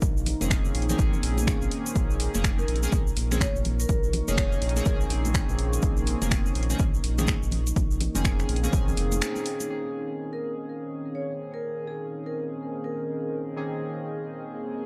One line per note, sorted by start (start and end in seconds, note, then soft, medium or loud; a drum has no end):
0.00 0.35 A#1 loud
0.00 9.66 A#3 medium
0.00 9.66 D#4 medium
0.00 9.66 A#4 medium
0.00 1.95 C5 medium
0.00 kick loud
0.00 closed hi-hat medium
0.00 shaker medium
0.17 shaker soft
0.26 open hi-hat loud
0.26 low conga medium
0.41 0.71 F1 medium
0.41 0.86 D#3 medium
0.41 0.86 A#3 medium
0.41 0.86 C4 medium
0.41 0.86 C#4 medium
0.41 0.86 G#4 loud
0.41 closed hi-hat soft
0.41 high conga medium
0.41 shaker medium
0.50 finger snap loud
0.50 kick loud
0.50 closed hi-hat medium
0.50 shaker medium
0.65 muted conga soft
0.65 shaker soft
0.75 0.94 A#1 loud
0.75 open hi-hat medium
0.82 closed hi-hat medium
0.89 2.31 D#3 loud
0.89 2.31 A#3 medium
0.89 2.31 C4 medium
0.89 2.31 C#4 medium
0.89 2.31 G#4 loud
0.89 closed hi-hat medium
0.89 high conga medium
0.89 low conga medium
0.89 shaker medium
0.99 1.10 G#1 loud
0.99 kick loud
0.99 closed hi-hat medium
0.99 shaker medium
1.13 low conga medium
1.13 shaker soft
1.23 1.56 A#1 medium
1.23 open hi-hat loud
1.23 muted conga soft
1.37 closed hi-hat soft
1.37 high conga loud
1.37 shaker medium
1.47 finger snap loud
1.47 kick loud
1.47 closed hi-hat medium
1.47 shaker medium
1.62 1.69 A#1 medium
1.62 muted conga medium
1.62 shaker soft
1.71 open hi-hat loud
1.86 closed hi-hat medium
1.86 shaker medium
1.95 2.29 A#1 loud
1.95 9.69 C#6 medium
1.95 kick loud
1.95 closed hi-hat medium
1.95 shaker medium
2.10 shaker soft
2.20 open hi-hat loud
2.34 2.64 F1 medium
2.34 2.79 D#3 medium
2.34 2.79 A#3 medium
2.34 2.79 C4 medium
2.34 2.79 C#4 medium
2.34 2.80 G#4 medium
2.34 closed hi-hat soft
2.34 high conga medium
2.34 shaker medium
2.44 finger snap loud
2.44 kick loud
2.44 closed hi-hat medium
2.44 shaker medium
2.59 2.68 A#4 medium
2.59 muted conga soft
2.59 shaker soft
2.68 2.88 A#1 loud
2.68 open hi-hat medium
2.76 closed hi-hat medium
2.83 2.94 D#3 medium
2.83 2.94 A#3 medium
2.83 2.94 C4 medium
2.83 2.95 C#4 medium
2.83 2.95 G#4 loud
2.83 closed hi-hat medium
2.83 high conga medium
2.83 shaker medium
2.92 3.12 A#1 loud
2.92 kick loud
2.92 closed hi-hat medium
2.92 shaker medium
3.07 shaker soft
3.17 3.50 A#1 medium
3.17 open hi-hat loud
3.31 3.43 D#3 loud
3.31 3.43 A#3 medium
3.31 3.43 C4 medium
3.31 3.43 C#4 medium
3.31 3.43 G#4 loud
3.31 finger snap soft
3.31 closed hi-hat soft
3.31 high conga medium
3.31 low conga loud
3.31 shaker medium
3.41 3.56 C#5 medium
3.41 finger snap loud
3.41 kick loud
3.41 closed hi-hat medium
3.41 shaker medium
3.55 3.85 A#1 medium
3.55 shaker soft
3.65 open hi-hat medium
3.65 muted conga medium
3.65 low conga medium
3.80 4.12 A#4 medium
3.80 closed hi-hat soft
3.80 shaker medium
3.89 4.22 A#1 loud
3.89 kick loud
3.89 closed hi-hat medium
3.89 shaker medium
4.04 shaker soft
4.13 open hi-hat loud
4.13 low conga medium
4.28 4.58 F1 medium
4.28 4.73 D#3 medium
4.28 4.73 A#3 medium
4.28 4.73 C#4 medium
4.28 4.73 D#4 medium
4.28 4.73 G#4 loud
4.28 4.95 C#5 medium
4.28 closed hi-hat medium
4.28 high conga medium
4.28 shaker medium
4.38 finger snap loud
4.38 kick loud
4.38 closed hi-hat medium
4.38 shaker medium
4.52 muted conga medium
4.52 shaker soft
4.62 4.81 A#1 loud
4.62 open hi-hat medium
4.69 closed hi-hat medium
4.76 6.18 D#3 loud
4.76 6.18 A#3 medium
4.76 6.18 C4 medium
4.76 6.18 C#4 medium
4.76 6.18 G#4 loud
4.76 closed hi-hat medium
4.76 high conga medium
4.76 shaker medium
4.85 5.05 A#1 loud
4.85 kick loud
4.85 closed hi-hat medium
4.85 shaker medium
5.01 shaker soft
5.10 5.43 A#1 medium
5.10 open hi-hat loud
5.10 muted conga soft
5.25 closed hi-hat medium
5.25 high conga medium
5.25 shaker medium
5.34 finger snap loud
5.34 kick loud
5.34 closed hi-hat medium
5.34 shaker medium
5.49 5.79 A#1 medium
5.49 muted conga medium
5.49 shaker soft
5.59 open hi-hat medium
5.73 closed hi-hat medium
5.73 shaker medium
5.82 6.16 A#1 loud
5.82 kick loud
5.82 closed hi-hat medium
5.82 shaker medium
5.97 shaker soft
6.07 open hi-hat loud
6.21 6.51 F1 medium
6.21 6.66 D#3 medium
6.21 6.66 A#3 medium
6.21 6.67 C4 medium
6.21 6.67 C#4 medium
6.21 6.67 G#4 medium
6.21 closed hi-hat medium
6.21 high conga medium
6.21 shaker medium
6.31 finger snap loud
6.31 kick loud
6.31 closed hi-hat medium
6.31 shaker medium
6.46 muted conga medium
6.46 shaker soft
6.55 6.75 A#1 loud
6.55 open hi-hat medium
6.63 closed hi-hat medium
6.70 6.81 D#3 medium
6.70 6.82 A#3 medium
6.70 6.82 C4 medium
6.70 6.82 C#4 medium
6.70 6.82 G#4 loud
6.70 closed hi-hat medium
6.70 high conga medium
6.70 shaker medium
6.79 6.99 A#1 medium
6.79 kick loud
6.79 closed hi-hat medium
6.79 shaker medium
6.94 shaker soft
7.04 7.37 A#1 medium
7.04 open hi-hat loud
7.18 7.30 D#3 loud
7.18 7.30 A#3 medium
7.18 7.30 C4 medium
7.18 7.30 C#4 medium
7.18 7.30 G#4 loud
7.18 finger snap soft
7.18 closed hi-hat medium
7.18 high conga medium
7.18 low conga medium
7.18 shaker medium
7.27 finger snap loud
7.27 kick loud
7.27 closed hi-hat medium
7.27 shaker medium
7.43 7.72 A#1 medium
7.43 shaker soft
7.51 open hi-hat medium
7.51 muted conga medium
7.51 low conga medium
7.67 closed hi-hat medium
7.67 shaker medium
7.76 8.09 A#1 loud
7.76 kick loud
7.76 closed hi-hat medium
7.76 shaker medium
7.91 shaker soft
8.01 open hi-hat loud
8.01 low conga medium
8.15 8.45 F1 medium
8.15 8.60 D#3 medium
8.15 8.60 A#3 medium
8.15 8.60 C4 medium
8.15 8.60 C#4 medium
8.15 8.60 G#4 loud
8.15 closed hi-hat medium
8.15 high conga medium
8.15 shaker medium
8.25 finger snap loud
8.25 kick loud
8.25 closed hi-hat medium
8.25 shaker medium
8.39 finger snap soft
8.39 muted conga medium
8.39 shaker soft
8.49 8.68 A#1 loud
8.49 open hi-hat medium
8.56 closed hi-hat medium
8.63 9.68 D#3 loud
8.63 9.69 A#3 medium
8.63 9.69 C4 medium
8.63 9.69 C#4 medium
8.63 9.69 G#4 loud
8.63 closed hi-hat medium
8.63 high conga medium
8.63 shaker medium
8.73 8.92 A#1 loud
8.73 kick loud
8.73 closed hi-hat medium
8.73 shaker medium
8.88 low conga medium
8.88 shaker soft
8.97 9.21 F1 loud
8.97 open hi-hat loud
8.97 muted conga soft
9.12 closed hi-hat medium
9.12 high conga medium
9.12 shaker medium
9.21 finger snap loud
9.21 closed hi-hat medium
9.21 shaker medium
9.36 muted conga medium
9.36 shaker soft
9.46 open hi-hat medium
9.60 closed hi-hat medium
9.60 muted conga soft
9.60 shaker medium
9.69 13.54 D#3 medium
9.69 13.55 A#3 medium
9.69 14.86 A#3 medium
9.69 13.55 C4 medium
9.69 13.55 C#4 medium
9.69 14.86 D#4 medium
9.69 14.86 G#4 medium
9.69 13.55 G#4 medium
9.69 13.56 C5 medium
10.10 14.86 G#4 medium
10.16 14.86 A#4 medium
10.32 10.42 A#4 medium
10.32 14.86 C5 medium
11.15 11.30 C#5 medium
11.54 11.86 A#4 medium
11.72 14.86 D#5 medium
11.87 12.02 G#4 medium
12.26 12.36 A#4 medium
12.84 13.33 A#4 medium
13.56 14.86 D#3 medium
13.56 14.86 A#3 medium
13.56 14.86 C4 medium
13.56 14.86 C#4 medium
13.56 14.86 G#4 medium
13.56 14.86 D#5 medium